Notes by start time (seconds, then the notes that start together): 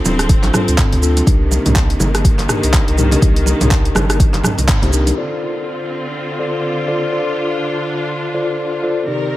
Already playing: C3 F3 C4 D4 F4 A4
0.05 D1, muted conga, high conga, low conga, shaker
0.19 cross-stick, closed hi-hat, shaker
0.29 kick, closed hi-hat, shaker
0.43 A1, clap, closed hi-hat, muted conga
0.53 C4 D4 F4 A4, cross-stick, mid tom, high conga, shaker
0.68 D2, closed hi-hat, shaker
0.78 kick, clap, closed hi-hat, mid tom, muted conga, shaker
0.92 D2, closed hi-hat, low conga
1.03 C4 D4 F4 A4, shaker
1.17 closed hi-hat, muted conga, shaker
1.26 C2 D#3 A#3, kick, closed hi-hat, high conga, shaker
1.51 muted conga, shaker
1.66 C2, closed hi-hat, mid tom, high conga, low conga, shaker
1.76 kick, clap, closed hi-hat, shaker
1.90 closed hi-hat
2.00 G1, muted conga, high conga, low conga, shaker
2.15 cross-stick, closed hi-hat, shaker
2.25 kick, closed hi-hat, shaker
2.39 G1, clap, closed hi-hat, muted conga
2.49 D4 D#4 G4 A#4, cross-stick, mid tom, shaker
2.63 C2, closed hi-hat, shaker
2.73 kick, clap, closed hi-hat, muted conga, shaker
2.88 C2, closed hi-hat
2.98 D4 D#4 G4 A#4, mid tom, high conga, shaker
3.11 closed hi-hat, muted conga, low conga, shaker
3.21 C2 D#4, kick, closed hi-hat, high conga, shaker
3.36 closed hi-hat
3.46 muted conga, shaker
3.60 C2, closed hi-hat, mid tom, high conga, low conga, shaker
3.71 kick, clap, closed hi-hat, shaker
3.85 closed hi-hat
3.95 G1, cross-stick, muted conga, high conga, low conga, shaker
4.10 cross-stick, closed hi-hat, shaker
4.20 kick, closed hi-hat, shaker
4.34 G1, clap, closed hi-hat, muted conga
4.44 cross-stick, mid tom, high conga, shaker
4.58 C2, closed hi-hat, low conga, shaker
4.69 kick, clap, closed hi-hat, mid tom, muted conga, shaker
4.82 C2 D4 D#4 G4 C5, closed hi-hat, low conga
4.93 D4 D#4 G4 A#4, shaker
5.07 closed hi-hat, muted conga, shaker
5.17 D3 C4 F4 A4 C5 D5, crash
5.42 shaker
5.91 shaker
6.39 F4 A4 C5 D5, shaker
6.88 F4 A4 C5 D5
7.12 D4 F4 A4 C5 D5
7.87 shaker
8.34 F4 A4 C5 D5, shaker
8.60 shaker
8.83 F4 A4 C5 D5, shaker
9.07 C3 D#3 C4 D#4 G4 A#4 D5
9.32 shaker